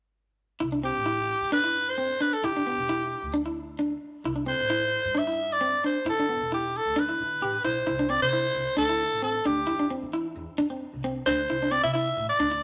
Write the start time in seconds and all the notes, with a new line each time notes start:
0.60 C2 E4
0.72 D4
0.84 C4 G4
0.96 A1
1.06 E4
1.41 G2
1.52 D4 B4
1.64 E4
1.89 C5
1.98 C4
2.20 D4 B4
2.33 A4
2.42 G1 E4 G4
2.56 D4
2.67 B3
2.77 E1
2.89 E4
3.22 D2
3.34 D4
3.46 E4
3.79 D4
4.24 C2 E4
4.36 D4
4.46 C4 C5
4.59 A1
4.70 E4
5.05 G2
5.15 D4 E5
5.27 E4
5.52 D5
5.61 C4
5.84 D4 C5
6.05 G1 E4
6.09 A4
6.19 D4
6.29 B3
6.40 E1
6.52 E4 G4
6.77 A4
6.86 D2
6.96 D4 B4
7.09 E4
7.19 G1
7.41 A1 G4
7.64 B1 E4 C5
7.87 C2 E4
7.99 D4
8.10 C4 D5
8.21 C3 C5
8.33 E4
8.55 C2
8.77 D2 D4 A4
8.89 E4
9.12 A1
9.22 C4 A4
9.45 D2 D4 G4
9.67 E2 E4
9.79 D4
9.90 C4
10.02 E3
10.13 E4
10.36 E2
10.58 F2 D4
10.70 C4
10.93 C2
11.04 C4
11.26 D2 D4 C5
11.49 C2 E4
11.63 D4
11.71 C4 D5
11.84 C3 E5
11.93 E4 E5
12.17 A1
12.29 D5
12.39 D2 D4
12.51 muted clean electric guitar stroke